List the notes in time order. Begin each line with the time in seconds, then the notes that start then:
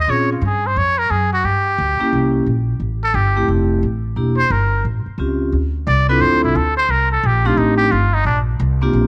0.00 D#5
0.08 A#2 C4 C#4 F4 G#4 C#5
0.33 F4
0.41 G2
0.46 G#4
0.67 C5
0.76 F2 C#5
0.99 A#4
1.10 F#2 G#4
1.33 F#4
1.44 G2 G4
1.78 D2
1.99 A#3 C#4 E4 G4, muted upright bass stroke
2.13 C2
2.46 A#1
2.80 A1
3.04 A4
3.14 G1 G4
3.36 A3 C4 E4 G4
3.48 F1
3.83 A1
4.16 E1 A#3 D4 E4 G4
4.38 C5
4.50 G1 A#4
4.85 A1
5.06 muted upright bass stroke
5.18 C#2 C4 C#4 F4 G4
5.52 D2
5.87 C2 D5
6.09 C4 D4 E4 F4 A4 B4
6.20 F2 C5
6.33 D2
6.44 C2 E4
6.55 D2 A4
6.77 C5
6.89 C2 A#4
7.12 A4
7.23 A#1 G4
7.45 A3 C4 D4 D#4 F4 G4
7.57 A1 D#4
7.78 G4
7.92 G1 F4
8.14 D#4
8.25 A#1 D4
8.60 C2
8.81 A#3 C4 D4 F4 G4
8.93 A#1